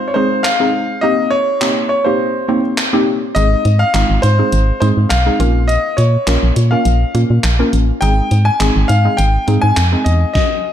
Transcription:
0.08 C#5
0.14 G#3 C4 D#4 G#4 C5
0.43 F5, clap
0.60 G#3 C4 D#4 G#4
1.01 A#3 C4 D#4 G4 D#5
1.31 C#5
1.61 A#3 C4 D#4 G4, clap
1.89 C#5
2.04 A#3 C4 D#4 G4 C5
2.48 A#3 C4 D#4 G4
2.78 clap
2.93 A#3 C4 D#4 G4
3.35 G#1 G#3 C4 D#4 G#4 D#5, closed hi-hat
3.65 G#2, closed hi-hat
3.79 F5
3.94 G#1 G#3 C4 D#4 F4, clap, closed hi-hat
4.10 G#1
4.22 G#2 C5, closed hi-hat
4.39 G#3 C4 D#4 G#4
4.52 G#1, closed hi-hat
4.80 G#2 G#3 C4 D#4 G#4 C5, closed hi-hat
4.97 G#2
5.09 B1 F5, clap, closed hi-hat
5.26 G#3 C4 D#4 G#4
5.40 A#1 A#3 C#4 F4 A#4, closed hi-hat
5.68 D#5, closed hi-hat
5.97 A#2 C#5, closed hi-hat
6.27 A#1 A#3 C#4 F4 A#4, clap, closed hi-hat
6.43 A#1
6.56 A#2, closed hi-hat
6.71 A#3 C#4 F4 A#4 F5
6.85 A#1, closed hi-hat
7.15 A#2 A#3 C#4 F4 A#4, closed hi-hat
7.30 A#2
7.44 A#1, clap, closed hi-hat
7.59 A#3 C#4 F4 A#4
7.73 A1, closed hi-hat
8.01 G#1 G#3 C4 D#4 G#4 G5, closed hi-hat
8.31 G#2, closed hi-hat
8.45 G#5
8.60 G#1 G#3 C4 D#4 G#4, clap, closed hi-hat
8.76 G#1
8.88 G#2 F5, closed hi-hat
9.05 G#3 C4 D#4 G#4
9.17 G#1 G5, closed hi-hat
9.48 G#2 G#3 C4 D#4 G#4, closed hi-hat
9.62 G#2 G#5
9.77 F2, clap, closed hi-hat
9.92 G#3 C4 D#4 G#4
10.04 E2 D#5, closed hi-hat
10.33 D#5, kick, snare

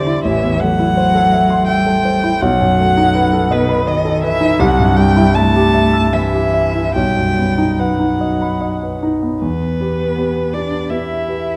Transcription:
Already playing: E2 D3 E3 G3 E4 G4 C5 D5 E5 C6
0.07 E4
0.23 A1 E3 E5
0.44 E2
0.60 F#3 A3 F#5
0.79 E4
0.97 C5
1.15 A4
1.32 E5
1.50 C6
1.68 G3 E5 G5
1.86 A4
2.05 C5
2.24 E4
2.41 B1 F#3 F#5
2.61 F#2
2.79 A3
2.97 D#4
3.15 B4
3.33 A4
3.51 B2 B4 D#5
3.69 B5
3.87 D#3 D#5
4.05 A4
4.23 E3 B4 E5
4.41 D#4
4.59 C2 F#3 F#5
4.78 G2
4.96 G3 G5
5.17 E4
5.35 A3 E5 A5
5.56 G4
5.74 E5
5.93 E6
6.13 E3 E5
6.34 G4
6.54 E5
6.75 E4
6.95 B1 G3 G5
7.16 F#2
7.38 B3
7.58 D#4
7.79 F#3 B4 F#5
8.00 D#4
8.21 D#5
8.42 B5
8.62 D#5
8.83 B4
9.03 D#4
9.23 B3
9.42 E2 B3 B4
9.80 G4 B4
10.17 B3 G4 B4
10.53 D4 G4 B4 D5
10.90 B3 E4 G4 B4 E5
11.28 G4 B4

